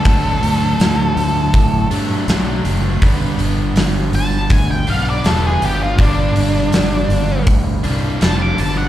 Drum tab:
HH |oooooooo|oooooooo|oooooooo|
SD |--o---o-|--o---o-|--o---o-|
BD |o---o---|o---o---|o---o---|